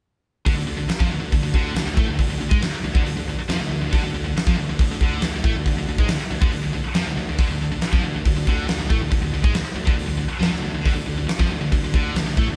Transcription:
0.46 D2 D3, kick, open hi-hat
0.55 D2 D3
0.66 D2 D3
0.77 D2 D3
0.88 muted distorted electric guitar stroke, muted picked electric bass stroke, snare, open hi-hat
0.99 F2 F3, kick
1.10 D2 D3
1.20 D2 D3
1.32 D2 D3, kick, open hi-hat
1.43 D2 D3
1.54 D2 D3, kick
1.74 D2 D3, snare, open hi-hat
1.86 D2 D3
1.94 A2 A3, kick
1.98 A3
2.05 D2 D3
2.11 D3
2.16 D2 D3, kick
2.20 open hi-hat
2.27 D2 D3
2.38 D2 D3
2.49 G#2 G#3, kick
2.61 D2 D3, snare, open hi-hat
2.71 muted distorted electric guitar stroke, muted picked electric bass stroke
2.82 D2 D3
2.93 D2 D3, kick
3.04 D2 D3, open hi-hat
3.16 D2 D3
3.27 D2 D3
3.38 muted picked electric bass stroke, muted distorted electric guitar stroke
3.49 F2 F3, snare, open hi-hat
3.60 D2 D3, snare
3.70 D2 D3
3.81 D2 D3
3.93 D2 D3, kick, open hi-hat
4.02 D2 D3
4.13 D2 D3
4.25 D2 D3
4.35 muted picked electric bass stroke, muted distorted electric guitar stroke, snare, open hi-hat
4.47 F2 F3, kick
4.58 D2 D3
4.68 D2 D3
4.79 D2 D3, kick, open hi-hat
4.91 D2 D3
5.01 D2 D3, kick
5.21 D2 D3, snare, open hi-hat
5.34 D2 D3
5.44 A2 A3, kick
5.55 D2 D3
5.66 D2 D3, kick, open hi-hat
5.76 D2 D3
5.88 D2 D3
5.98 G#2 G#3, kick
6.08 D2 D3, snare, open hi-hat
6.19 muted picked electric bass stroke, muted distorted electric guitar stroke
6.30 D2 D3
6.41 D2 D3, kick
6.52 D2 D3, open hi-hat
6.62 D2 D3
6.73 D2 D3
6.84 muted picked electric bass stroke, muted distorted electric guitar stroke
6.94 F2 F3, snare, open hi-hat
7.06 D2 D3, snare
7.17 D2 D3
7.29 D2 D3
7.38 D2 D3, kick, open hi-hat
7.50 D2 D3
7.61 D2 D3
7.71 D2 D3
7.81 muted picked electric bass stroke, muted distorted electric guitar stroke, snare, open hi-hat
7.93 F2 F3, kick
8.03 D2 D3
8.15 D2 D3
8.25 D2 D3, kick, open hi-hat
8.37 D2 D3
8.47 D2 D3, kick
8.67 D2 D3, snare, open hi-hat
8.79 D2 D3
8.90 A2 A3, kick
9.00 D2 D3
9.11 D2 D3, kick, open hi-hat
9.21 D2 D3
9.31 D2 D3
9.43 G#2 G#3, kick
9.54 D2 D3, snare, open hi-hat
9.63 muted distorted electric guitar stroke, muted picked electric bass stroke
9.75 D2 D3
9.86 D2 D3, kick
9.96 D2 D3, open hi-hat
10.08 D2 D3
10.18 D2 D3
10.28 muted distorted electric guitar stroke, muted picked electric bass stroke
10.40 F2 F3, snare, open hi-hat
10.51 D2 D3
10.55 snare
10.60 D2 D3
10.71 D2 D3
10.81 D3
10.85 D2 D3, kick, open hi-hat
10.94 D2 D3
11.06 D2 D3
11.18 D2 D3
11.28 muted distorted electric guitar stroke, muted picked electric bass stroke, snare, open hi-hat
11.38 F2 F3, kick
11.51 D2 D3
11.61 D2 D3
11.71 D2 D3, kick, open hi-hat
11.83 D2 D3
11.94 D2 D3, kick
12.15 D2 D3, snare, open hi-hat
12.25 D2 D3, snare
12.37 A2 A3, kick
12.47 D2 D3

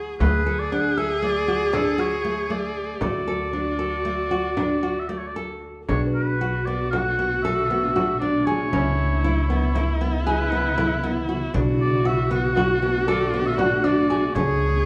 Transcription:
Already playing: D2 G#4 F#5 B5 C#6
0.20 D2 A3 G#4 B4, frame drum
0.46 A4
0.59 D5
0.71 D4 F#5, frame drum
0.97 A4 E5
1.22 A3 D5
1.48 F#4
1.73 D4 A4, frame drum
1.98 F#4 C#5
2.24 A3
2.50 A3 D5
2.75 frame drum
3.01 D2 A3 F#4 D5, frame drum
3.27 A4, frame drum
3.53 D4, frame drum
3.79 A4
4.05 A3
4.31 F#4, frame drum
4.57 D4, frame drum
4.83 F#4
4.99 E5
5.09 A3 D5
5.18 C#5
5.27 D5
5.36 A4, frame drum
5.88 B1 B2 A3 D4 F#4 G#4 C#5, frame drum
6.07 B4
6.14 B4
6.41 F#4
6.65 B3 D5
6.91 F#4 F#5, frame drum
7.19 B3
7.43 A4 E5
7.70 B3
7.96 F#4, frame drum
8.20 D4 D5
8.45 G#4 C#5
8.72 C#2 C#3 B3 C#4 E4, frame drum
9.24 E4
9.48 B3 C#5
9.75 E4, frame drum
10.01 B3
10.26 G#4 B4
10.52 B3
10.78 E4, frame drum
11.03 B3
11.29 F#4
11.54 B1 B2 A3 D4 F#4, frame drum
11.81 D5
12.05 F#4 E5
12.31 B3 F#5
12.56 F#4, frame drum
12.82 B3
13.07 A4 D5
13.26 D5
13.34 B3
13.47 E5
13.58 F#4 D5 F#5, frame drum
13.84 D4 D5
14.10 G#4
14.34 C#2 C#3 B3 C#4 E4 G#4 C#5, frame drum

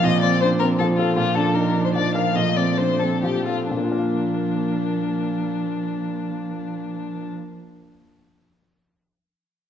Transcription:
Already playing: F3
0.03 A#2 C4 D#5
0.22 C4 D5
0.41 D4 C5
0.59 C4 A#4
0.79 F3 A4
0.97 F4 A4
1.16 A#2 F3 D4 F4
1.35 D4 A4
1.54 D#4 A#4
1.74 D4
1.85 C5
1.94 F3 D5
2.15 A#4 F5
2.35 A#2 A3 D#5
2.56 C4 D5
2.78 D4 C5
2.99 C4 A4
3.22 F3 G4
3.45 F4 A4
3.70 A#2 F3 A#3 D4
3.77 A#3
3.84 F4
3.91 A#4
3.98 F5

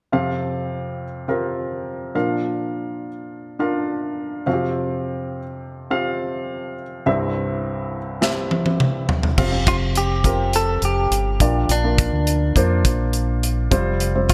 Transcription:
0.12 F2 C3 C4 F4 G4 F5
1.28 C4 F4 G4 A#4
2.15 A#2 F3 D4 F4 A#4 F5
3.59 D4 F4 A#4 F5
4.46 F2 C3 C4 F4 F#4 F5
4.53 G4
5.90 C4 F4 G4 F5
7.06 C2 G2 C4 E4 G4 E5
8.21 C4 E4 G4 E5, snare
8.51 high tom
8.66 high tom
8.80 mid tom
9.09 floor tom
9.23 floor tom
9.38 F1 C3 C4 F4 G4 F5, kick, crash
9.52 C4 F4 G4 F5
9.67 F4, kick, closed hi-hat
9.95 G4, closed hi-hat
10.24 C4 F4 G4 A#4, kick, closed hi-hat
10.53 A4, closed hi-hat
10.82 F1 G4, closed hi-hat
11.11 G1, closed hi-hat
11.40 A#1 A#2 F3 A#3 D4 F4 D5, kick, closed hi-hat
11.69 A#1 D4, closed hi-hat
11.84 A#3 D4 F4 A#4
11.98 kick, closed hi-hat
12.12 D2
12.27 closed hi-hat
12.56 F2 A#3 D4 F4 C5, kick, closed hi-hat
12.85 A#1, kick, closed hi-hat
13.13 closed hi-hat
13.43 closed hi-hat
13.71 F1 C3 G3 C4 F4 C5, kick, closed hi-hat
14.00 closed hi-hat
14.15 G3 C4 F4 C5
14.29 F4, kick, closed hi-hat

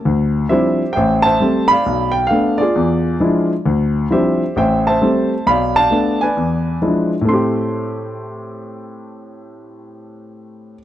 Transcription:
0.05 D2
0.49 F3 G3 C4 D4 E4 G4 C5 E5
0.93 A1 C5 E5 G5
1.22 C5 E5 A5
1.40 G3 A3 C4
1.68 D5 F5 B5
1.86 B1
2.12 G5
2.27 A3 F5
2.31 B3 D4
2.58 F4 G#4 D5
2.76 E2
3.20 F3 G#3 D4 E4
3.66 D2
4.10 F3 G3 C4 D4 E4 G4 C5 E5
4.56 A1 C5 E5 G5
4.87 C5 E5 A5
5.01 G3 A3 C4
5.46 B1 D5 F5 B5
5.76 D5 F5 A5
5.91 A3 B3 D4
6.21 B4 D5 G#5
6.37 E2
6.82 F3 G#3 D4 E4
7.21 A2 A3
7.29 C4 C6
7.33 G4

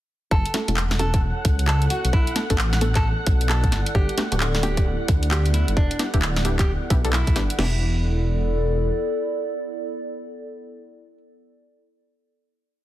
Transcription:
0.31 F#1 B3 A4 F#5, kick
0.46 closed hi-hat
0.54 A3 C#4 E4 F#4 A4, snare, open hi-hat
0.67 E1 A3 C#4 E4 F#4 A4, closed hi-hat
0.77 clap
0.91 snare
0.99 A3 C#4 E4 F#4 A4, open hi-hat
1.04 C#5
1.14 kick, closed hi-hat
1.45 C#2, kick, open hi-hat
1.59 closed hi-hat
1.67 A4, clap
1.82 closed hi-hat
1.90 F#4, open hi-hat
2.04 B1, closed hi-hat
2.13 B1 E4, kick
2.27 closed hi-hat
2.36 A3 B3 D4 F#4 A4, snare, open hi-hat
2.50 A1 A3 B3 D4 F#4 A4, kick, closed hi-hat
2.54 D5, clap
2.73 snare, closed hi-hat
2.81 A3 B3 D4 F#4 A4, open hi-hat
2.95 A4, kick, clap, closed hi-hat
3.27 B1, kick, open hi-hat
3.41 closed hi-hat
3.49 A4, clap
3.64 kick, closed hi-hat
3.72 G1, snare, open hi-hat
3.86 closed hi-hat
3.95 G1 G4, kick
4.09 closed hi-hat
4.18 A3 B3 D4 F#4 G4, snare, open hi-hat
4.32 D1 A3 B3 D4 F#4 G4, closed hi-hat
4.40 clap
4.55 snare
4.63 A3 B3 D4 F#4 G4, open hi-hat
4.77 kick, closed hi-hat
5.08 D2, kick, open hi-hat
5.23 closed hi-hat
5.31 G4, clap
5.46 closed hi-hat
5.54 E4, open hi-hat
5.68 G1, closed hi-hat
5.77 E1 D4, kick
5.91 closed hi-hat
5.99 G3 B3 D4 E4 G4, snare, open hi-hat
6.14 D1 G3 B3 D4 E4 G4, kick, closed hi-hat
6.22 clap
6.36 snare, closed hi-hat
6.45 G3 B3 D4 E4 G4, open hi-hat
6.59 G4, kick, clap, closed hi-hat
6.90 B1 G3 B3 D4 E4 G4, kick, open hi-hat
7.05 G3 B3 D4 E4 A4, closed hi-hat
7.13 E4, clap
7.27 B1, kick, closed hi-hat
7.36 G1 G3 B3 D4 E4 G4, snare, open hi-hat
7.50 closed hi-hat
7.58 E1 G3 B3 D4 E4 G4, snare, crash
7.67 E4
7.74 A4
7.80 D5

